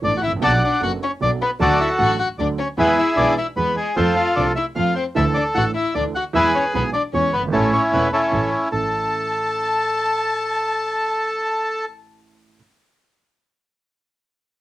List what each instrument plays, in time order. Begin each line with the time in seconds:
0.02 grand piano A1 A2 E3 A3 B3 A4, double bass A1, violin D4, bandoneon D5
0.17 violin F#4, bandoneon F#5
0.23 double bass A1, violin E4, bandoneon E5
0.27 grand piano G#1
0.31 grand piano A1
0.36 grand piano A#1
0.41 grand piano B1 B2 F#3 B3 D4 A4, double bass B1, violin A4, bandoneon D5 F#5 A5
0.64 violin D4, bandoneon D5
0.80 grand piano F#1 F#2 F#3 B3 D4 A4, double bass F#1, violin F#4, bandoneon F#5
1.03 violin C#4, bandoneon C#5
1.20 grand piano B1 B2 F#3 B3 D4 A4, double bass B1, violin D4, bandoneon D5
1.42 violin B3, bandoneon B4
1.59 grand piano D2 D3 F#3 A3 D4 A4, double bass D2, violin D4, bandoneon F#4 A4 D5
1.80 violin E4, bandoneon E5
1.98 grand piano A1 A2 F#3 A3 D4 A4, double bass A1, violin F#4, bandoneon F#5
2.19 violin F#4, bandoneon F#5
2.38 double bass D2, grand piano D2 D3 F#3 A3 D4 A4, violin D4, bandoneon D5
2.59 violin C#4, bandoneon C#5
2.78 double bass E2, grand piano E2 E3 G#3 B3 G#4, violin B3, bandoneon E4 G#4 B4
2.97 violin E4, bandoneon E5
3.17 double bass B1, grand piano B1 B2 E3 G#3 B3 G#4, violin D4, bandoneon D5
3.38 violin E4, bandoneon E5
3.56 double bass E2, grand piano E2 E3 G#3 B3 G#4, violin B3, bandoneon B4
3.77 violin G#3, bandoneon G#4
3.96 grand piano F2 F3 A3 C4 A4, double bass F2, violin C4, bandoneon F4 A4 C5
4.16 violin F4, bandoneon F5
4.36 grand piano C2 C3 F3 A3 C4 A4, double bass C2, violin D4, bandoneon D5
4.56 violin E4, bandoneon E5
4.75 grand piano F2 F3 A3 C4 A4, double bass F2, violin F4, bandoneon F5
4.95 violin C4, bandoneon C5
5.15 grand piano D2 D3 E3 A3 D4 A4, double bass D2, violin E4, bandoneon A4 E5
5.34 violin D4, bandoneon D5
5.55 grand piano A1 A2 E3 A3 D4 A4, double bass A1, violin F#4, bandoneon F#5
5.76 violin E4, bandoneon E5
5.95 grand piano D2 D3 E3 A3 D4 A4, double bass D2, violin D4, bandoneon D5
6.15 violin F#4, bandoneon F#5
6.33 grand piano E2 E3 G#3 B3 G#4, double bass E2, violin E4, bandoneon G#4 B4 E5
6.55 violin C#4, bandoneon C#5
6.73 grand piano B1 B2 E3 G#3 B3 G#4, double bass B1, violin B3, bandoneon B4
6.93 violin D4, bandoneon D5
7.13 grand piano E2 E3 G#3 B3 G#4, double bass E2, violin C#4, bandoneon C#5
7.33 double bass G1, violin B3, bandoneon B4
7.39 grand piano F#1
7.43 grand piano G1
7.48 grand piano G#1
7.52 grand piano A1 A2 E3 A3 C#4 A4, double bass A1, violin A3, bandoneon C#4 E4 A4
7.73 violin C#4, bandoneon C#5
7.93 double bass E1, grand piano E1 E2 E3 A3 C#4 A4, violin B3, bandoneon B4
8.13 violin A3, bandoneon C#4 E4 A4
8.32 grand piano A1 A2 E3 A3 C#4 A4, double bass A1
8.72 grand piano A1 C#4 E4 A4, double bass A1, bandoneon A4, violin A5